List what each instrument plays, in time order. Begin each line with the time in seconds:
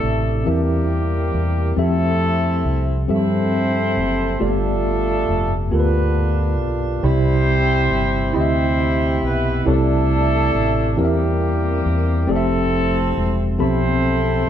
Already playing: tine electric piano C3 C4 E4 G4 A4 D5, horn section A3 D4 E4 A4
0.03 fingered electric bass A1
0.45 fingered electric bass E2, tine electric piano E3 C4 E4 G4 A#4 E5, horn section A#3 C4
0.50 horn section G3 G4
1.34 fingered electric bass E2
1.77 fingered electric bass F2, tine electric piano F3 C4 G4 A4 E5, horn section C4 E4
1.81 horn section A3 A4
2.65 fingered electric bass C2
3.08 fingered electric bass G2, tine electric piano F3 C4 G4 A4 E5, horn section E4 A4
3.14 horn section C4 C5
3.97 fingered electric bass F#1
4.40 fingered electric bass G1, tine electric piano G2 A3 F4 G4 A4 D5, horn section D4 F4
4.46 horn section A3 A4, tine electric piano B3
5.28 fingered electric bass F1
5.71 fingered electric bass D2, tine electric piano B3 F4 G4 A4 A#4, horn section D4 F4
5.75 horn section B3 B4
5.80 tine electric piano B4
6.59 fingered electric bass B1
7.03 fingered electric bass C2, tine electric piano C3 C4 E4 G4 D5 B5, horn section C4 E4 G4 C5
7.90 fingered electric bass G1
8.33 fingered electric bass D2, tine electric piano C4 E4 G4 D#5 B5, horn section C4 E4 G4 C5
8.41 tine electric piano E5
8.79 tine electric piano G5
9.22 fingered electric bass B1, horn section B3 B4, tine electric piano E5
9.65 fingered electric bass C2, tine electric piano C3 C4 E4 G4 A4 C#5, horn section A3 D4 E4 A4
9.74 tine electric piano D5
10.55 fingered electric bass A1
10.97 fingered electric bass E2, tine electric piano E3 C4 E4 G4 A#4 D5, horn section G3 A#3 C4 G4
11.05 tine electric piano E5
11.86 fingered electric bass E2
12.27 fingered electric bass F1, tine electric piano F3 C4 G4 A4 D5, horn section C4 E4
12.32 horn section A3 A4
12.36 tine electric piano E5
13.17 fingered electric bass E1
13.59 fingered electric bass B1, tine electric piano F3 C4 G4 A4 B5, horn section C4 E4 A4 C5